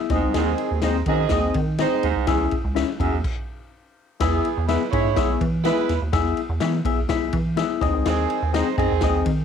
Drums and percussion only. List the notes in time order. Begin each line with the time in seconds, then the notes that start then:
0.09 kick, snare, ride
0.34 snare, ride
0.58 ride
0.82 snare, ride
1.06 kick, ride
1.29 kick, snare, ride
1.54 kick, ride
1.78 snare, ride
2.03 ride
2.27 kick, snare, ride
2.51 kick, ride
2.76 snare, ride
3.00 kick, ride
3.24 kick, crash
4.20 kick, snare, ride
4.45 ride
4.69 snare, ride
4.93 kick, ride
5.16 kick, snare, ride
5.41 kick, ride
5.65 snare, ride
5.89 snare, ride
6.13 kick, snare, ride
6.37 ride
6.60 snare, ride
6.85 kick, ride
7.09 kick, snare, ride
7.33 kick, ride
7.57 snare, ride
7.81 kick, snare, ride
8.06 snare, ride
8.30 ride
8.54 snare, ride
8.78 kick, ride
9.01 kick, snare, ride
9.26 kick, ride